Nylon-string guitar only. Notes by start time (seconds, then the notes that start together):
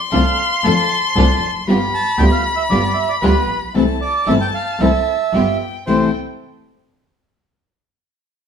0.12 D3 A3 C4 F4
0.64 D3 A3 C4 F4
1.16 D3 A3 C4 F4
1.67 G3 B3 F4
2.19 G3 B3 F4
2.71 G3 B3 F4
3.23 G3 B3 F4
3.74 C3 E3 A3 C4 E4
4.27 C3 E3 A3 C4 E4
4.80 C3 E3 A3 C4 E4
5.33 G3 B3 F4
5.87 C3 E3 A3 C4 E4